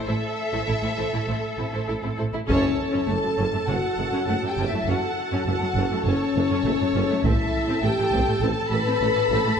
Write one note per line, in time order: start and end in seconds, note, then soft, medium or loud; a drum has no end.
0.07 0.14 A1 soft
0.07 0.14 A3 soft
0.07 0.14 E4 soft
0.07 0.14 A4 soft
0.07 2.16 A4 soft
0.07 0.14 C5 soft
0.07 1.89 E5 medium
0.52 0.59 A1 soft
0.52 0.59 A3 soft
0.52 0.59 E4 soft
0.52 0.60 A4 soft
0.52 0.60 C5 soft
0.67 0.74 A1 soft
0.67 0.73 A3 soft
0.67 0.73 E4 soft
0.67 0.75 E4 soft
0.67 0.75 A4 soft
0.81 0.88 A1 soft
0.81 0.88 A3 soft
0.81 0.90 C4 soft
0.81 0.88 E4 soft
0.81 0.89 E4 soft
0.96 1.04 A1 soft
0.96 1.03 A3 soft
0.96 1.03 E4 soft
0.96 1.05 A4 soft
0.96 1.04 C5 soft
1.13 1.20 A1 soft
1.13 1.19 A3 soft
1.13 1.19 E4 soft
1.13 1.20 E4 soft
1.13 1.20 A4 soft
1.27 1.34 A1 soft
1.27 1.34 A3 soft
1.27 1.34 E4 soft
1.27 1.35 A4 soft
1.27 1.35 C5 soft
1.58 1.65 A1 soft
1.58 1.65 A3 soft
1.58 1.65 C4 soft
1.58 1.65 E4 soft
1.72 1.80 A1 soft
1.72 1.79 A3 soft
1.72 1.79 E4 soft
1.72 1.80 A4 soft
1.72 1.80 C5 soft
1.88 1.95 A1 soft
1.88 1.94 A3 soft
1.88 1.95 E4 soft
1.88 1.95 A4 soft
2.02 2.11 A1 soft
2.02 2.09 A3 soft
2.02 2.10 C4 soft
2.02 2.09 E4 soft
2.17 2.25 A1 soft
2.17 2.24 A3 soft
2.17 2.24 E4 soft
2.17 2.24 A4 soft
2.17 2.24 C5 soft
2.33 2.39 A1 soft
2.33 2.39 A3 soft
2.33 2.39 E4 soft
2.33 2.40 E4 soft
2.33 2.40 A4 soft
2.47 2.63 F#1 medium
2.47 2.64 F#1 medium
2.47 2.64 F#2 medium
2.47 2.62 C#4 medium
2.47 3.06 C#4 medium
2.47 7.19 A4 medium
2.47 3.06 C#5 medium
2.47 7.21 A5 medium
2.47 taiko medium
2.92 3.00 F#2 soft
2.92 2.98 C#4 medium
3.07 3.15 F#1 soft
3.07 3.16 F#1 soft
3.07 3.16 F#2 soft
3.07 3.13 A3 soft
3.07 3.69 A4 medium
3.07 3.68 A5 medium
3.23 3.30 F#2 soft
3.23 3.29 F#3 soft
3.37 3.45 F#1 soft
3.37 3.45 F#2 soft
3.37 3.43 C#4 soft
3.53 3.59 F#2 soft
3.53 3.59 A3 soft
3.68 3.74 F#1 soft
3.68 3.76 F#1 soft
3.68 3.74 F#2 medium
3.68 3.74 C#4 soft
3.68 4.27 F#4 medium
3.68 4.26 F#5 medium
3.98 4.04 F#1 soft
3.98 4.05 F#1 soft
3.98 4.04 F#2 soft
3.98 4.04 F#3 soft
4.12 4.18 F#2 soft
4.12 4.19 C#4 soft
4.27 4.33 F#1 soft
4.27 4.35 F#1 soft
4.27 4.33 F#2 soft
4.27 4.34 A3 soft
4.27 4.48 F#4 medium
4.27 4.47 F#5 soft
4.42 4.49 F#2 soft
4.42 4.49 F#3 soft
4.47 4.68 G4 medium
4.47 4.67 G5 soft
4.57 4.63 F#1 soft
4.57 4.64 F#1 medium
4.57 4.64 F#2 medium
4.57 4.65 C#4 soft
4.68 4.88 E4 soft
4.68 4.88 E5 soft
4.72 4.79 F#2 soft
4.72 4.80 A3 soft
4.87 4.93 F#1 medium
4.87 4.94 F#1 soft
4.87 4.93 F#2 soft
4.87 4.95 C#4 medium
4.87 5.46 F#4 medium
4.87 5.47 F#5 soft
5.32 5.38 F#2 medium
5.32 5.38 C#4 soft
5.46 5.52 F#1 soft
5.46 5.53 F#1 soft
5.46 5.53 F#2 soft
5.46 5.53 A3 soft
5.46 6.05 F#4 medium
5.46 6.05 F#5 soft
5.61 5.67 F#2 soft
5.61 5.68 F#3 soft
5.76 5.82 F#1 medium
5.76 5.83 F#1 soft
5.76 5.82 F#2 soft
5.76 5.83 C#4 medium
5.91 5.97 F#2 soft
5.91 5.98 A3 soft
6.05 6.11 F#1 soft
6.05 6.13 F#1 soft
6.05 6.11 F#2 soft
6.05 7.23 C#4 medium
6.05 6.13 C#4 soft
6.05 7.22 C#5 medium
6.36 6.42 F#1 soft
6.36 6.42 F#2 soft
6.36 6.43 F#3 soft
6.51 6.57 F#2 medium
6.51 6.57 C#4 medium
6.65 6.71 F#1 soft
6.65 6.72 F#1 soft
6.65 6.71 F#2 soft
6.65 6.72 A3 soft
6.80 6.86 F#2 soft
6.80 6.87 F#3 soft
6.95 7.01 F#1 medium
6.95 7.01 F#2 medium
6.95 7.01 C#4 medium
7.10 7.16 F#2 soft
7.10 7.16 A3 soft
7.24 7.30 A1 medium
7.24 7.30 A2 medium
7.24 7.31 C4 medium
7.24 7.84 E4 medium
7.24 9.60 A4 soft
7.24 7.83 E5 medium
7.24 9.60 A5 medium
7.24 taiko medium
7.68 7.74 A2 medium
7.68 7.75 C4 soft
7.83 7.89 A1 soft
7.83 7.90 A1 soft
7.83 7.89 A2 soft
7.83 7.91 A3 soft
7.83 8.41 G4 medium
7.83 8.43 G5 medium
7.98 8.04 A2 soft
7.98 8.05 E3 soft
8.12 8.18 A1 medium
8.12 8.19 A1 medium
8.12 8.18 A2 medium
8.12 8.20 C4 medium
8.12 taiko soft
8.28 8.34 A2 soft
8.28 8.34 A3 soft
8.41 8.47 A1 medium
8.41 8.49 A1 medium
8.41 8.48 A2 medium
8.41 8.49 C4 soft
8.41 8.72 A4 medium
8.41 8.72 A5 soft
8.70 8.77 A1 soft
8.70 8.78 A1 soft
8.70 8.76 A2 soft
8.70 8.77 E3 soft
8.70 9.44 B4 medium
8.70 9.58 B5 medium
8.85 8.91 A2 medium
8.85 8.93 C4 medium
9.00 9.07 A1 soft
9.00 9.07 A2 soft
9.00 9.08 A3 soft
9.16 9.22 A2 soft
9.16 9.22 E3 soft
9.30 9.36 A1 medium
9.30 9.37 A2 medium
9.30 9.39 C4 medium
9.44 9.51 A2 soft
9.44 9.52 A3 soft